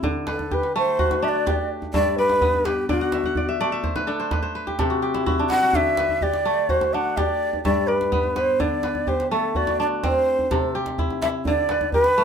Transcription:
Already playing: kora C4 E4 A4
0.03 kora D3, djembe bass
0.27 shakuhachi A4, kora B4, djembe slap
0.39 djembe tone
0.51 kora G4, shakuhachi B4, djembe slap, djembe bass
0.63 djembe slap
0.76 kora A3, shakuhachi C5
0.99 kora F#4, djembe slap, djembe bass
1.11 djembe slap, djembe tone
1.22 kora D4, shakuhachi E5
1.28 shakuhachi D5
1.46 kora G4, djembe slap, djembe bass
1.82 djembe tone
1.94 kora G2 E5, shakuhachi D5, djembe slap, djembe bass
2.18 shakuhachi B4, kora D5
2.30 djembe slap
2.41 kora B3, djembe slap, djembe bass
2.54 djembe tone
2.65 shakuhachi G4, kora B4, djembe slap
2.89 kora D3 D5, shakuhachi F#4, djembe bass
3.01 kora F#5
3.12 kora E5, djembe slap
3.24 kora F#5, djembe slap, djembe tone
3.35 kora D5, djembe bass
3.49 kora E5
3.59 kora A3 D5, djembe slap
3.72 kora E5, djembe slap
3.84 kora C5, djembe slap, djembe bass
3.96 kora B4, djembe slap, djembe tone
4.07 kora D4 A4
4.20 kora C5
4.31 kora B4, djembe slap, djembe bass
4.43 kora C5
4.55 kora B4
4.67 kora G4, djembe slap, djembe tone
4.79 kora C3 A4, djembe slap, djembe bass
4.90 kora F#4
5.02 kora G4
5.14 kora E4, djembe slap
5.26 kora E4 F#4, djembe bass
5.38 kora D4, djembe tone
5.50 kora E4, shakuhachi F#5, djembe slap
5.63 kora F#4
5.73 kora D3, shakuhachi E5, djembe bass
5.97 kora B4, djembe slap
6.09 djembe tone
6.21 kora G4, shakuhachi D5, djembe slap, djembe bass
6.33 djembe slap
6.45 kora A3
6.69 kora F#4, shakuhachi C5, djembe slap, djembe bass
6.81 djembe slap, djembe tone
6.94 kora D4, shakuhachi F#5
7.17 kora G4, shakuhachi D5, djembe slap, djembe bass
7.53 djembe tone
7.64 kora G2 E5, shakuhachi D5, djembe slap, djembe bass
7.87 shakuhachi B4, kora D5
8.01 djembe slap
8.12 kora B3, djembe slap, djembe bass
8.23 djembe tone
8.36 kora B4, shakuhachi C5, djembe slap
8.60 kora D3, shakuhachi D5, djembe bass
8.83 kora B4, djembe slap
8.95 djembe tone
9.07 kora G4, shakuhachi C5, djembe slap, djembe bass
9.20 djembe slap
9.31 kora A3, shakuhachi A4
9.55 kora F#4, shakuhachi D5, djembe slap, djembe bass
9.67 djembe slap, djembe tone
9.80 kora D4, shakuhachi D5
10.03 kora C4, shakuhachi C5, djembe slap, djembe bass
10.39 djembe tone
10.51 kora C3 A4, djembe slap, djembe bass
10.75 kora G4
10.86 djembe slap
10.98 kora E4, djembe slap, djembe bass
11.10 djembe tone
11.22 kora E4, shakuhachi E5, djembe slap
11.45 kora D3, shakuhachi D5, djembe bass
11.69 kora B4, djembe slap
11.81 djembe tone
11.92 kora G4, shakuhachi B4, djembe slap, djembe bass
12.04 djembe slap
12.18 kora A3

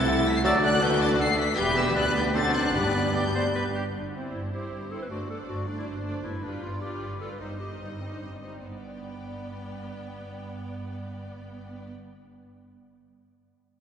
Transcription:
Already playing: double bass section C2, cello section C3, viola section A3 E4, french horn section A3 E4, violin section E4 A4 A6
0.08 clarinet E5
0.27 violin section B6
0.37 violin section C7
0.45 cello section D2, double bass section D2, timpani D3, bassoon F#3, viola section D4, violin section F#4 D5 A6, french horn section F#4, oboe A4, clarinet D5, flute D5
0.65 violin section F#6
0.83 clarinet B4, violin section G6
1.01 violin section A6
1.19 clarinet A4, violin section C7
1.39 violin section B6
1.50 violin section C7
1.58 double bass section E1, cello section E2, bassoon G3, viola section B3 G4, french horn section B3 G4, clarinet G4, violin section G4 B4 G6, oboe B4, flute E5
1.78 violin section E6
1.96 cello section D2, double bass section D2, bassoon G3, french horn section B3 G4, viola section D4, oboe B4, clarinet B4, violin section D5 F#6, flute D5
2.17 violin section G6
2.35 bassoon F#3, viola section C4, french horn section C4 F#4, violin section F#4 A6, clarinet A4, oboe C5, flute D5
2.56 violin section F#6
2.75 double bass section G1, timpani G2, cello section G2, bassoon G3, viola section B3, french horn section B3 G4, violin section G4 F#6, clarinet B4, oboe B4, flute D5
3.15 bassoon G3, french horn section B3 G4, oboe D5, flute D5, violin section G6
3.35 oboe C5
3.55 oboe B4
3.76 oboe G4
3.96 double bass section G1, cello section G2, clarinet D4
4.15 clarinet C4, viola section C4 E4, violin section C5
4.34 double bass section G1, cello section G2, clarinet E4, violin section C5
4.53 viola section C4 E4, clarinet G4, violin section C5
4.73 double bass section G1, cello section G2
4.92 viola section C4 E4, clarinet A4, violin section C5
5.02 clarinet B4
5.11 double bass section G1, cello section G2, viola section A3 D4, clarinet F#4, violin section C5 D5
5.30 viola section A3 D4, clarinet A4, violin section C5 D5
5.48 double bass section G1, cello section G2, clarinet F#4, violin section D5
5.67 viola section A3 D4, clarinet D4, violin section C5 D5
5.78 clarinet E4
5.85 double bass section G1, cello section G2, clarinet D4, violin section C5
6.05 viola section A3 D4, violin section C5 D5
6.23 double bass section G1, cello section G2, clarinet E4, violin section B4
6.42 viola section G3 F4, clarinet D4, violin section B4 D5
6.61 double bass section G1, cello section G2, clarinet F4, violin section D5
6.81 viola section G3 F4, clarinet G4, violin section B4 D5
7.01 double bass section G1, cello section G2, violin section B4
7.20 viola section G3 F4, clarinet A4, violin section B4 D5
7.31 clarinet B4
7.39 double bass section G1, cello section G2, viola section G3 D#4, clarinet D#4, violin section C5 D#5
7.59 viola section G3 D#4, clarinet G4, violin section C5 D#5
7.80 double bass section G1, cello section G2, clarinet D#4, violin section D#5
8.00 viola section G3 D#4, clarinet C4, violin section C5 D#5
8.13 clarinet D4
8.22 double bass section G1, cello section G2, clarinet C4, violin section D#5
8.43 viola section G3 D#4, violin section C5 D#5
8.65 double bass section G1, cello section G2, clarinet G3, viola section B3, violin section D5 G5

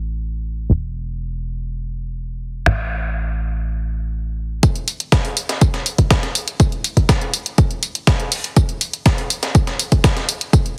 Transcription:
Already playing: analog synth bass A1
0.70 analog synth bass E1
2.66 analog synth bass A1, finger snap
4.63 analog synth bass E1, kick, closed hi-hat, tambourine
4.76 closed hi-hat
4.88 open hi-hat, tambourine
5.00 closed hi-hat
5.12 kick, snare, closed hi-hat, tambourine
5.25 closed hi-hat
5.37 open hi-hat, tambourine
5.49 snare, closed hi-hat
5.61 kick, closed hi-hat, tambourine
5.74 snare, closed hi-hat
5.86 open hi-hat, tambourine
5.98 kick, closed hi-hat
6.11 kick, snare, closed hi-hat, tambourine
6.23 snare, closed hi-hat
6.35 open hi-hat, tambourine
6.48 closed hi-hat
6.60 analog synth bass A1, kick, closed hi-hat, tambourine
6.72 closed hi-hat
6.84 open hi-hat, tambourine
6.97 kick, closed hi-hat
7.09 kick, snare, closed hi-hat, tambourine
7.21 closed hi-hat
7.34 open hi-hat, tambourine
7.46 closed hi-hat
7.58 kick, closed hi-hat, tambourine
7.71 closed hi-hat
7.83 open hi-hat, tambourine
7.95 closed hi-hat
8.07 kick, snare, closed hi-hat, tambourine
8.20 closed hi-hat
8.32 open hi-hat
8.44 closed hi-hat
8.56 analog synth bass E1, kick, closed hi-hat, tambourine
8.69 closed hi-hat
8.81 open hi-hat, tambourine
8.93 closed hi-hat
9.06 kick, snare, closed hi-hat, tambourine
9.18 closed hi-hat
9.30 open hi-hat, tambourine
9.43 snare, closed hi-hat
9.55 kick, closed hi-hat, tambourine
9.67 snare, closed hi-hat
9.79 open hi-hat, tambourine
9.92 kick, closed hi-hat
10.04 kick, snare, closed hi-hat, tambourine
10.17 snare, closed hi-hat
10.29 open hi-hat, tambourine
10.41 closed hi-hat
10.53 analog synth bass A1, kick, closed hi-hat, tambourine
10.66 closed hi-hat

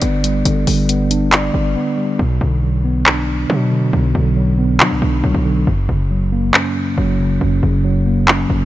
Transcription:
Already playing: tine electric piano D3 G3 B3 D4 D5
0.02 808-style bass G1, tine electric piano B3, closed hi-hat
0.24 tine electric piano G3, closed hi-hat
0.45 808-style bass G1, tine electric piano D3, closed hi-hat
0.67 808-style bass G1, tine electric piano G3, open hi-hat
0.89 tine electric piano B3, closed hi-hat
1.11 tine electric piano D4, closed hi-hat
1.32 tine electric piano D5, clap, closed hi-hat
1.54 808-style bass G1
1.76 tine electric piano B3
1.98 tine electric piano G3
2.19 808-style bass B1, tine electric piano B2
2.41 808-style bass B1, tine electric piano D3
2.63 tine electric piano F#3
2.85 tine electric piano B3
3.06 tine electric piano D4, clap
3.50 808-style bass B2, tine electric piano F#3
3.72 tine electric piano D3
3.93 808-style bass B1, tine electric piano B2
4.15 808-style bass B1, tine electric piano D3
4.37 tine electric piano F#3
4.59 tine electric piano B3
4.80 808-style bass F#3, tine electric piano D4, clap
4.91 808-style bass B1
5.02 808-style bass B1
5.24 808-style bass B1, tine electric piano F#3
5.34 808-style bass B1
5.45 tine electric piano D3
5.67 808-style bass F#1, tine electric piano F#2
5.89 808-style bass F#1, tine electric piano C#3
6.11 tine electric piano F#3
6.32 tine electric piano A#3
6.54 tine electric piano C#4, clap
6.97 808-style bass F#1, tine electric piano F#3
7.20 tine electric piano C#3
7.41 808-style bass F#1, tine electric piano F#2
7.63 808-style bass F#1, tine electric piano C#3
7.84 tine electric piano F#3
8.06 tine electric piano A#3
8.28 tine electric piano C#4, clap
8.50 808-style bass F#1

